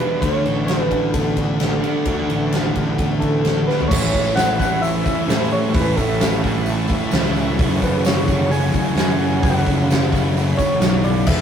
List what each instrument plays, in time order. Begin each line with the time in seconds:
Already playing: distorted electric guitar E2 B2 E3, clean electric guitar B3 A4, string machine D4 B4 E5 B5
0.00 overdriven electric guitar E2 B2 E3 G#3 D4 E4, clean electric guitar D4, soft synth lead B4
0.20 picked electric bass D2, overdriven electric guitar D3 A3 D4 F#4, clean electric guitar F#3, string machine A4 F#5, soft synth lead C#5, kick, ride
0.45 picked electric bass A1, clean electric guitar A4, ride
0.67 clean electric guitar D4, soft synth lead B4, snare, ride
0.90 distorted electric guitar D3 A3 D4, clean electric guitar F#3, kick, ride
1.14 picked electric bass A1, clean electric guitar B3, soft synth lead A4, kick, ride
1.37 clean electric guitar D4, kick, ride
1.60 picked electric bass A1, clean electric guitar A4, snare, ride
1.81 overdriven electric guitar D3 A3 D4 F#4, clean electric guitar D4, ride
2.05 picked electric bass D2, overdriven electric guitar D3 A3 D4 F#4, clean electric guitar F#3, kick, ride
2.29 picked electric bass A1, clean electric guitar A4, ride
2.52 clean electric guitar D4, snare, ride
2.72 distorted electric guitar D3 A3 D4, clean electric guitar F#3, kick, ride
2.98 picked electric bass A1, clean electric guitar B3, kick, ride
3.20 clean electric guitar D4, soft synth lead A4, kick, ride
3.44 picked electric bass A1, clean electric guitar A4, snare, ride
3.67 overdriven electric guitar D3 A3 D4 F#4, clean electric guitar D4, soft synth lead B4, snare
3.80 floor tom
3.88 picked electric bass A1, overdriven electric guitar A2 E3 A3 C#4, string machine E4 E5 G#5 C#6, soft synth lead C#5, kick, crash
3.92 overdriven electric guitar E4, tambourine
4.14 picked electric bass A1, kick, open hi-hat, tambourine
4.36 soft synth lead F#5, snare, open hi-hat, tambourine
4.59 overdriven electric guitar A2 E3 A3 C#4 E4, soft synth lead F#5, kick, open hi-hat, tambourine
4.82 soft synth lead E5, open hi-hat, tambourine
5.04 distorted electric guitar A2 E3 A3, kick, open hi-hat, tambourine
5.28 overdriven electric guitar A2 E3 A3 C#4 E4, picked electric bass A2, snare, open hi-hat, tambourine
5.41 snare
5.51 soft synth lead C#5, open hi-hat
5.70 distorted electric guitar A2, string machine A5, open hi-hat
5.74 picked electric bass A1, overdriven electric guitar A2 E3 A3 C#4 E4, soft synth lead B4, kick, tambourine
5.97 picked electric bass A1, soft synth lead A4, kick, open hi-hat, tambourine
6.20 snare, open hi-hat, tambourine
6.43 overdriven electric guitar A2 E3 A3 C#4 E4, kick, open hi-hat
6.66 open hi-hat, tambourine
6.88 distorted electric guitar A2 E3 A3, kick, open hi-hat, tambourine
7.11 picked electric bass C#2, overdriven electric guitar A2 E3 A3 C#4 E4, snare, open hi-hat, tambourine
7.26 snare
7.36 open hi-hat
7.58 picked electric bass F#1, overdriven electric guitar F#2 C#3 F#3 A3 C#4 F#4, string machine C#5, kick, open hi-hat, tambourine
7.62 string machine F#5
7.82 picked electric bass F#1, soft synth lead B4, kick, open hi-hat, tambourine
8.05 soft synth lead C#5, snare, open hi-hat, tambourine
8.28 overdriven electric guitar F#2 C#3 F#3 A3 C#4 F#4, kick, open hi-hat, tambourine
8.51 soft synth lead G#5, open hi-hat, tambourine
8.71 distorted electric guitar F#2 C#3 F#3, kick, open hi-hat, tambourine
8.96 picked electric bass F#2, overdriven electric guitar F#2 C#3 F#3 A3 C#4 F#4, soft synth lead G#5, snare, open hi-hat, tambourine
9.10 snare
9.20 open hi-hat
9.42 picked electric bass F#1, overdriven electric guitar F#2 C#3 F#3 A3 C#4 F#4, soft synth lead F#5, string machine B5, kick, open hi-hat, tambourine
9.66 picked electric bass F#1, kick, open hi-hat, tambourine
9.91 snare, open hi-hat, tambourine
10.12 overdriven electric guitar F#2 C#3 F#3 A3 C#4 F#4, kick, open hi-hat, tambourine
10.37 open hi-hat, tambourine
10.57 distorted electric guitar F#2 C#3 F#3, soft synth lead C#5, kick, open hi-hat, tambourine
10.80 picked electric bass B1, overdriven electric guitar F#2 C#3 F#3 A3 C#4, snare, open hi-hat, tambourine
10.85 overdriven electric guitar F#4
11.03 soft synth lead D5, open hi-hat, tambourine
11.25 picked electric bass E1, overdriven electric guitar E2 B2, clean electric guitar B3, string machine D4 E5 B5, soft synth lead E5, kick, tambourine, crash
11.29 overdriven electric guitar E3 G#3 D4 E4